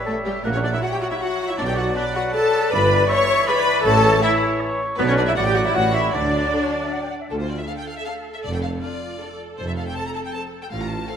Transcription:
Already playing: G3 C#5 E5
0.05 A3 A4
0.25 G3 G4
0.43 A#1 A#2 F#3 A#3 A#4 E5 F#5
0.53 C#4 C#5
0.63 D4 D5
0.73 E4 E5
0.82 F#4 C#5 F#5
0.92 G4 G5
1.01 F#4 F#5
1.11 E4 E5
1.19 F#4 F#5
1.47 E4 E5
1.57 B1 B2 D4 D5
1.66 G4 G5
1.75 F#4 F#5
1.94 D4 B4 D5
2.14 F#4 F#5
2.32 A4 A5
2.72 G1 G2 E3 B4 D5 B5
3.09 C#5 E5 C#6
3.47 B4 D5 B5
3.54 C#5
3.61 B4
3.85 A1 A2 A4 C#5 A5
4.22 E4 E5
4.60 C#5
4.97 B1 B2 F#3 B3 B4 D5
5.06 C#4 C#5
5.16 D4 D5
5.26 E4 E5
5.35 A1 A2 F#3 F#4 D5 F#5
5.45 G4 G5
5.54 F#4 F#5
5.64 E4 E5
5.74 A1 A2 G3 F#4 C#5 F#5
5.93 E4 E5
6.12 D2 D3 F#3 D4 D5
6.53 A4
6.63 C#5
6.72 D5
6.83 E5
6.93 F#5
7.02 G5
7.10 F#5
7.21 E5
7.31 D2 F4 A4
7.40 C5
7.50 D5
7.58 E5
7.68 D4 A4 F5
7.78 G5
7.88 F5
7.98 E5
8.06 D4 A4 F5
8.34 E5
8.44 F1 F2 D5
8.55 G5
8.63 F5
8.82 D4 F4 A4 D5
9.20 D4 A4
9.57 F1 F2 C5
9.68 E5
9.77 F5
9.86 G5
9.96 C4 A4 A5
10.06 A#5
10.15 A5
10.25 G5
10.33 C4 A4 A5
10.63 G5
10.70 A1 A2 F4 F5
10.80 A#5
10.88 A5
11.08 C4 A4 F5

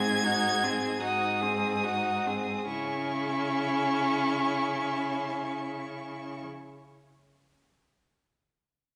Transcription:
Already playing: G#2 C4 G#4 G#6
0.24 D#4 F#4
0.63 C4 G#4
1.00 G#2 D#4 F#4 D#6
1.41 C4 G#4
1.84 D#4 F#4
2.27 C4 G#4
2.66 C#3 C#4 E4 C#6

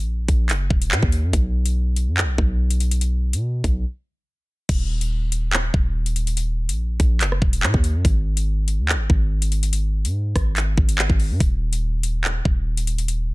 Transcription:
Already playing: A#1
0.28 A#1, kick, closed hi-hat
0.49 F#1, clap, closed hi-hat
0.70 D#1, kick
0.82 closed hi-hat
0.91 A#2, clap
1.03 D#2, kick
1.12 closed hi-hat
1.24 F#2
1.33 B1, kick, closed hi-hat
1.66 closed hi-hat
1.96 closed hi-hat
2.08 F#2
2.17 clap
2.23 B1
2.38 B1, kick
2.70 closed hi-hat
2.80 closed hi-hat
2.91 closed hi-hat
3.01 closed hi-hat
3.33 B2, closed hi-hat
3.64 B1, kick, closed hi-hat
4.69 D#1, kick, closed hi-hat, crash
5.01 closed hi-hat
5.32 closed hi-hat
5.53 clap
5.74 D#1, kick
6.06 closed hi-hat
6.16 closed hi-hat
6.27 closed hi-hat
6.37 closed hi-hat
6.69 A#1, closed hi-hat
7.00 A#1, kick, closed hi-hat
7.21 F#1, clap, closed hi-hat
7.32 cross-stick
7.42 D#1, kick
7.53 closed hi-hat
7.63 A#2, clap
7.74 D#2, kick
7.84 closed hi-hat
7.95 F#2
8.05 G#1, kick, closed hi-hat
8.37 closed hi-hat
8.68 closed hi-hat
8.79 D#2
8.89 clap
8.94 G#1
9.10 G#1, kick
9.42 closed hi-hat
9.52 closed hi-hat
9.63 closed hi-hat
9.73 closed hi-hat
10.05 G#2, closed hi-hat
10.36 G#1, kick, cross-stick, closed hi-hat
10.57 clap, closed hi-hat
10.78 G#1, kick
10.89 closed hi-hat
10.98 clap
11.10 G#1, kick
11.20 open hi-hat
11.31 G#2
11.40 D#1, kick, closed hi-hat
11.73 closed hi-hat
12.03 closed hi-hat
12.24 clap
12.45 D#1, kick
12.77 closed hi-hat
12.87 closed hi-hat
12.98 closed hi-hat
13.08 closed hi-hat

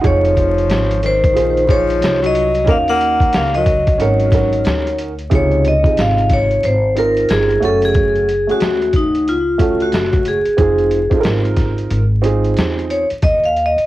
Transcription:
Already playing: F#5
0.01 F1 F3 D#4 F4 G#4 C#5, kick, closed hi-hat
0.07 C#5
0.25 closed hi-hat
0.37 kick, closed hi-hat
0.58 closed hi-hat
0.70 G#1, snare, closed hi-hat
0.91 closed hi-hat
1.03 D#3 C5, snare, closed hi-hat
1.24 kick, closed hi-hat
1.34 A#1 D#4 F4 G#4 C5, closed hi-hat
1.57 closed hi-hat
1.67 F3 D#4 F4 G#4 C#5, kick, closed hi-hat
1.90 closed hi-hat
2.01 C2, snare, closed hi-hat
2.22 F#3 D#5, closed hi-hat
2.35 closed hi-hat
2.55 closed hi-hat
2.65 D#2 A#3 C#4 D#4 F#4 A#4, kick, closed hi-hat
2.71 F5
2.88 A#3 F#5, closed hi-hat
3.01 closed hi-hat
3.20 kick, closed hi-hat
3.33 C#2 A#3 F5, snare, closed hi-hat
3.54 F#3 D#5, closed hi-hat
3.66 kick, closed hi-hat
3.87 kick, closed hi-hat
3.98 G#1 F#3 C#4 D#4 F#4 A#4 C#5, closed hi-hat
4.20 closed hi-hat
4.31 C#4 D#4 F#4 A#4, kick, snare, closed hi-hat
4.53 closed hi-hat
4.65 D2, snare, closed hi-hat
4.87 closed hi-hat
4.99 closed hi-hat
5.19 closed hi-hat
5.30 C#2 C3 D#4 F4, kick, closed hi-hat
5.34 G#4 C#5
5.51 closed hi-hat
5.65 D#5, closed hi-hat
5.83 C3 D#4 F4 G#4, muted upright bass stroke, kick, closed hi-hat
5.97 G#1 F5, snare, closed hi-hat
6.18 closed hi-hat
6.30 kick, snare, closed hi-hat
6.34 C#5
6.51 closed hi-hat
6.63 G#1 C5, closed hi-hat
6.95 C4 D#4 F4 A#4, closed hi-hat
7.17 closed hi-hat
7.29 G1 G#4, snare, closed hi-hat
7.50 closed hi-hat
7.60 F#1 A3 C#4 F#4 C#5, closed hi-hat
7.65 A4
7.82 G#4, closed hi-hat
7.94 kick, closed hi-hat
8.15 closed hi-hat
8.29 closed hi-hat
8.47 A3 C#4 F#4 G#4, closed hi-hat
8.51 F#4
8.60 D#2, snare, closed hi-hat
8.82 closed hi-hat
8.93 D#4, kick, closed hi-hat
9.15 closed hi-hat
9.27 C#2 F4, closed hi-hat
9.58 A3 C#4 F#4 A4, kick, closed hi-hat
9.80 F#4, closed hi-hat
9.92 F#1, snare, closed hi-hat
10.13 kick, closed hi-hat
10.25 G#4, closed hi-hat
10.45 muted upright bass stroke, closed hi-hat
10.57 F1 C4 D#4 F4 G#4, kick, closed hi-hat
10.78 closed hi-hat
10.91 closed hi-hat
11.10 C4 D#4 F4 A4, muted upright bass stroke, kick, closed hi-hat
11.20 A#4, closed hi-hat
11.25 G#1, snare
11.45 closed hi-hat
11.57 kick, snare, closed hi-hat
11.78 closed hi-hat
11.90 G#1, closed hi-hat
12.22 C4 D#4 F4 G#4, closed hi-hat
12.44 closed hi-hat
12.57 E2, snare, closed hi-hat
12.79 closed hi-hat
12.90 C#5, closed hi-hat
13.10 muted upright bass stroke, closed hi-hat
13.22 D#2 D#5, kick, closed hi-hat
13.44 F5, closed hi-hat
13.57 closed hi-hat
13.66 D#5
13.77 muted upright bass stroke, closed hi-hat

